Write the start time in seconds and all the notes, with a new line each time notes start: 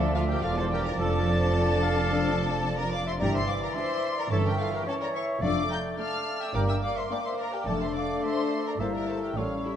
Already playing: D2 F3 D4 A4 D5 E5
0.15 F4 A4 F5
0.29 G4 A#4 G5
0.42 E1 E2 F3 D4 F4 A4 D5 F5
0.58 A4 C5 A5
0.71 G4 A#4 G5
0.84 A#4 D5 A#5
0.98 F1 F2 F3 D4 A4 D5 A5
1.27 C5
1.54 D5
1.82 F5
2.10 F3 D4 A4
2.66 D5
2.79 A#4 D5 A#5
2.92 D5 F5 D6
3.06 C5 E5 C6
3.20 G1 G2 E3 D4 G4 A#4 D5 A#5
3.33 C5 E5 C6
3.47 D5 F5 D6
3.61 A#4 D5 A#5
3.75 E3 D4 C5 E5 C6
4.17 A#4 D5 A#5
4.30 G1 G2 E3 C#4 A4 C#5 E5 A5
4.45 G4 A#4 G5
4.59 F4 A4 F5
4.74 G4 A#4 G5
4.86 E3 C#4 A4 C#5 A5
5.01 A#4 D5 A#5
5.14 C#5 E5 C#6
5.41 F1 F2 F3 A3 D4 A4 D5 F5 D6
5.70 G5 A#5 G6
5.98 A3 D4 D5 F5 A5 F6
6.40 E5 G5 E6
6.54 G1 G2 G3 A#3 D4 A#4 D5 G5 D6
6.68 E5 G5 E6
6.82 D5 F5 D6
6.97 C5 E5 C6
7.10 A#3 D4 A#4 D5 G5 D6
7.24 C5 E5 C6
7.38 A#4 D5 A#5
7.52 G4 A#4 G5
7.66 F1 F2 A3 D4 A4 D5 A5
7.81 C5 E5 C6
7.95 D5 F5 D6
8.23 A3 D4 C5 E5 C6
8.65 A#4 D5 A#5
8.79 G1 G2 G3 A#3 E4 A4 A#4 C5 E5 A5
8.93 A#4 D5 A#5
9.08 A3 A4 C5 A5
9.22 G4 A#4 G5
9.35 A1 A2 G3 C#4 F4 A4 C#5 F5
9.64 E4 G4 E5